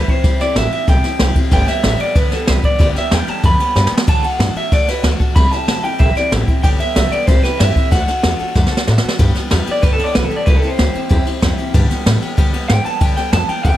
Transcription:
0.08 C4 E4 G4 C5, muted upright bass stroke, kick, ride
0.24 C2 C3 G3 C4 E4 G4, kick, snare, ride
0.40 C4 E4 G4 D5, muted upright bass stroke, snare, ride
0.55 A1 G3 C4 E4 G4 E5, snare, ride
0.72 C4 E4 G4 E5, muted upright bass stroke, ride
0.87 B1 C3 G3 C4 E4 G4 G5, kick, snare, ride
1.03 C4 E4 G4, muted upright bass stroke, snare, ride
1.19 C2 G3 C4 E4 G4, snare, ride
1.35 C4 E4 G4, muted upright bass stroke, kick, ride
1.51 G1 G2 D3 G3 B3 D4 G4 G5, kick, ride
1.67 G3 B3 D4 G4 E5, muted upright bass stroke, snare, ride
1.83 A1 G3 B3 D4 G4, snare, ride
1.99 G3 B3 D4 G4 D5, muted upright bass stroke, ride
2.15 B1 G2 D3 G3 B3 D4 G4 B4, kick, ride
2.31 G3 B3 D4 G4 A4, muted upright bass stroke, snare, ride
2.47 C2 G3 B3 D4 G4 B4, snare, ride
2.63 G3 B3 D4 G4 D5, muted upright bass stroke, kick, ride
2.79 D2 G2 D3 G3 B3 D4 G4 D5, kick, snare, ride
2.95 G3 B3 D4 G4 E5, muted upright bass stroke, snare, ride
3.11 E2 G3 B3 D4 G4 G5, snare, ride
3.27 G3 B3 D4 G4 A5, muted upright bass stroke, ride
3.43 F2 G2 D3 G3 B3 D4 G4 B5, kick, ride
3.59 G3 B3 D4 G4, muted upright bass stroke, ride
3.75 G2 G3 B3 D4 G4, snare
3.87 snare
3.91 G3 B3 D4 G4, muted upright bass stroke
3.97 snare
4.07 A2 D3 A3 D4 F#4 A4 A5, kick, ride, splash
4.23 D4 F#4 A4 F#5, muted upright bass stroke, ride
4.39 G2 A3 D4 F#4 A4, snare, ride
4.55 D4 F#4 A4 E5, muted upright bass stroke, ride
4.72 F#2 D3 A3 D4 F#4 A4 D5, kick, snare, ride
4.87 D4 F#4 A4 B4, muted upright bass stroke, snare, ride
5.03 D2 A3 D4 F#4 A4, snare, ride
5.20 D4 F#4 A4, muted upright bass stroke, kick, ride
5.36 C2 C3 G3 C4 E4 G4 B5, kick, snare, ride
5.51 C4 E4 G4 A5, muted upright bass stroke, snare, ride
5.67 B1 G3 C4 E4 G4, snare, ride
5.83 C4 E4 G4 G5, muted upright bass stroke, ride
5.99 A#1 C3 G3 C4 E4 G4 E5, kick, ride
6.15 C4 E4 G4 D5, muted upright bass stroke, snare, ride
6.31 A1 G3 C4 E4 G4, snare, ride
6.47 C4 E4 G4, muted upright bass stroke, kick, ride
6.63 G1 G2 D3 G3 B3 D4 G4 G5, kick, ride
6.79 G3 B3 D4 G4 E5, muted upright bass stroke, ride
6.95 B1 G3 B3 D4 G4, snare, ride
7.11 G3 B3 D4 G4 D5, muted upright bass stroke, ride
7.26 C2 C3 G3 C4 E4 G4 C5, kick, snare, ride
7.43 C4 E4 G4 B4, muted upright bass stroke, snare, ride
7.59 G2 G3 C4 E4 G4 E5, snare, ride
7.75 C4 E4 G4, muted upright bass stroke, kick, ride
7.91 D2 D3 A3 D4 F#4 A4 F#5, kick, snare, ride
8.08 D4 F#4 A4, muted upright bass stroke, snare, ride
8.23 E2 A3 D4 F#4 A4, snare, ride
8.39 D4 F#4 A4, muted upright bass stroke, ride
8.55 F#2 D3 A3 D4 F#4 A4, kick, snare
8.66 snare
8.71 D4 F#4 A4, muted upright bass stroke
8.77 snare
8.87 A2 A3 D4 F#4 A4, snare
8.98 snare
9.02 D4 F#4 A4, muted upright bass stroke
9.08 snare
9.19 G2 D3 G3 B3 D4 G4, kick, ride
9.35 G3 B3 D4 G4, muted upright bass stroke, snare, ride
9.50 E2 G3 B3 D4 G4, snare, ride
9.66 G3 B3 D4 G4, muted upright bass stroke, ride
9.71 D5
9.82 D2 G2 D3 G3 B3 D4 G4 B4, kick, ride
9.93 A4
9.98 G3 B3 D4 G4, muted upright bass stroke, ride
10.04 D5
10.14 B1 G3 B3 D4 G4 B4, snare, ride
10.25 A4
10.30 G3 B3 D4 G4, muted upright bass stroke, ride
10.36 D5
10.46 C2 C3 G3 C4 E4 G4 B4, kick, ride
10.56 A4
10.62 C4 E4 G4, muted upright bass stroke, ride
10.67 C5
10.77 D2 G3 C4 E4 G4, snare, ride
10.93 C4 E4 G4, muted upright bass stroke, ride
11.09 E2 C3 G3 C4 E4 G4, kick, ride
11.25 C4 E4 G4, muted upright bass stroke, ride
11.41 F2 G3 C4 E4 G4, kick, snare, ride
11.58 C4 E4 G4, muted upright bass stroke, ride
11.74 G2 D3 G3 B3 D4 G4, kick, ride
11.90 G3 B3 D4 G4, muted upright bass stroke, snare, ride
12.06 A2 G3 B3 D4 G4, snare, ride
12.22 G3 B3 D4 G4, muted upright bass stroke, ride
12.37 G2 B2 D3 G3 B3 D4 G4, kick, ride
12.53 G3 B3 D4 G4, muted upright bass stroke, ride
12.68 G#2 B3 D4 G4 G5, snare, ride
12.84 G3 B3 D4 G4 A5, muted upright bass stroke, ride
13.00 G2 D3 G3 B3 D4 G4 G5, kick, ride
13.17 G3 B3 D4 G4 G5, muted upright bass stroke, snare, ride
13.32 F2 G3 B3 D4 G4 A5, snare, ride
13.48 G3 B3 D4 G4 G5, muted upright bass stroke, ride
13.63 E2 G2 D3 G3 B3 D4 G4 G5, kick, ride

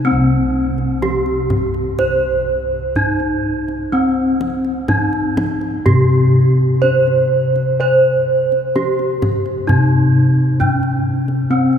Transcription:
Already playing: C3
0.05 C4
0.12 C2
0.78 kendang slap
1.02 C#4 G4, kendang high
1.26 kendang slap
1.50 kendang high, kendang low
1.74 kendang slap
1.99 C5, kendang low
2.96 C#4 D#4, kendang low
3.20 kendang slap
3.68 kendang slap
3.92 C4
4.41 kendang high
4.65 kendang slap
4.88 C#4 D#4, kendang high, kendang low
5.13 kendang slap
5.37 kendang high, kendang low
5.61 kendang slap
5.86 C3 G4, kendang low
6.82 C#4 C5
7.07 kendang slap
7.56 kendang slap
7.80 C5
8.52 kendang slap
8.76 C#4 G4, kendang high
8.99 kendang slap
9.22 kendang high, kendang low
9.46 kendang slap
9.67 C3 D#4, kendang low
10.60 C#4, kendang low
10.83 kendang slap
11.28 kendang slap
11.50 C4
11.73 kendang slap

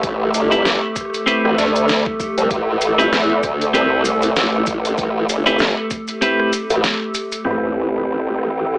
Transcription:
Already playing: A1 A3 G4 A4
0.03 kick, closed hi-hat, maracas
0.34 G1, closed hi-hat, maracas
0.51 C4 E4 G4 B4, closed hi-hat, maracas
0.65 snare, closed hi-hat, maracas
0.96 kick, closed hi-hat, maracas
1.01 cross-stick
1.05 cross-stick
1.10 cross-stick
1.14 cross-stick, closed hi-hat, maracas
1.18 cross-stick
1.21 cross-stick
1.24 C4 E4 G4 B4, cross-stick, closed hi-hat, maracas
1.45 A1, cross-stick
1.58 D2, snare, closed hi-hat, maracas
1.76 closed hi-hat, maracas
1.88 snare, closed hi-hat, maracas
2.06 kick
2.20 kick, maracas
2.37 C2, closed hi-hat, maracas
2.51 A1, kick, closed hi-hat, maracas
2.81 closed hi-hat, maracas
2.93 G#1
2.98 C4 E4 G4 B4, closed hi-hat, maracas
3.12 E2, snare, closed hi-hat, maracas
3.43 D2, kick, cross-stick, closed hi-hat, maracas
3.61 closed hi-hat, maracas
3.73 C2 C4 E4 G4 B4, closed hi-hat, maracas
4.05 closed hi-hat, maracas
4.22 closed hi-hat, maracas
4.36 A1, snare, closed hi-hat, maracas
4.66 kick, closed hi-hat, maracas
4.85 closed hi-hat, maracas
4.97 kick, closed hi-hat, maracas
5.29 G1, closed hi-hat, maracas
5.46 C4 E4 G4 B4, closed hi-hat, maracas
5.59 snare, closed hi-hat, maracas
5.91 kick, closed hi-hat, maracas
6.07 closed hi-hat, maracas
6.21 C4 E4 G4 B4, closed hi-hat, maracas
6.39 cross-stick
6.53 closed hi-hat, maracas
6.70 A1, closed hi-hat, maracas
6.84 snare, closed hi-hat, maracas
7.14 closed hi-hat, maracas
7.32 closed hi-hat, maracas
7.45 A1 C4 E4 G4 A4 B4 G5, sub drop
8.39 cross-stick

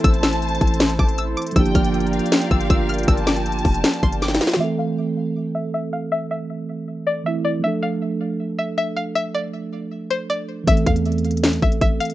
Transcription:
Already playing: E3 A3 C4 E4 A4 C5 A5
0.04 A1 A5 E6, kick, closed hi-hat
0.14 closed hi-hat
0.23 E6, snare, closed hi-hat
0.33 closed hi-hat
0.42 closed hi-hat
0.48 closed hi-hat
0.55 closed hi-hat
0.61 A1, kick, closed hi-hat
0.67 closed hi-hat
0.74 closed hi-hat
0.80 snare, closed hi-hat
0.90 closed hi-hat
0.99 A1 A5 D6, kick
1.09 closed hi-hat
1.18 E6, closed hi-hat
1.37 D6, closed hi-hat
1.42 closed hi-hat
1.47 closed hi-hat
1.51 F3 A#3, closed hi-hat
1.56 G1 D4 F4 A#4 D5 G5 E6, kick, closed hi-hat
1.60 G4
1.66 closed hi-hat
1.75 G1 F6, kick, closed hi-hat
1.84 closed hi-hat
1.94 closed hi-hat
2.00 closed hi-hat
2.07 closed hi-hat
2.13 F5, closed hi-hat
2.19 closed hi-hat
2.26 closed hi-hat
2.32 snare, closed hi-hat
2.42 closed hi-hat
2.51 G1 E6, kick
2.61 closed hi-hat
2.70 G1 E6, kick, closed hi-hat
2.89 F6, closed hi-hat
2.94 closed hi-hat
2.98 closed hi-hat
3.03 closed hi-hat
3.08 G1 A5 E6, kick, closed hi-hat
3.17 closed hi-hat
3.27 D6, snare, closed hi-hat
3.36 closed hi-hat
3.46 closed hi-hat
3.52 closed hi-hat
3.59 closed hi-hat
3.65 F1, kick, open hi-hat
3.74 closed hi-hat
3.84 snare, closed hi-hat
3.93 closed hi-hat
4.03 G1 C6, kick
4.13 closed hi-hat
4.22 G5 D6, snare, closed hi-hat
4.28 snare, closed hi-hat
4.35 snare, closed hi-hat
4.41 F5, snare, closed hi-hat
4.47 snare
4.54 E3, snare
4.59 A3 C4 E5
4.64 A4
4.79 F5
5.55 E5
5.74 E5
5.93 F5
6.12 E5
6.31 E5
7.07 D5
7.24 E3 A3 C4 E4 E5
7.45 D5
7.59 F3 A3
7.64 D4 A4 E5
7.83 F5
8.59 E5
8.78 E5
8.96 F5
9.15 E5
9.35 D5
10.10 C5
10.30 D5
10.64 A1 E3 A3, kick, closed hi-hat
10.68 C4 A4 E5
10.77 closed hi-hat
10.86 E2 F5, kick, closed hi-hat
10.96 closed hi-hat
11.06 closed hi-hat
11.12 closed hi-hat
11.18 closed hi-hat
11.25 closed hi-hat
11.31 closed hi-hat
11.37 closed hi-hat
11.44 snare, closed hi-hat
11.53 closed hi-hat
11.62 A1 E5, kick
11.72 closed hi-hat
11.81 A1 E5, kick, closed hi-hat
12.00 F5, closed hi-hat
12.05 closed hi-hat
12.10 closed hi-hat

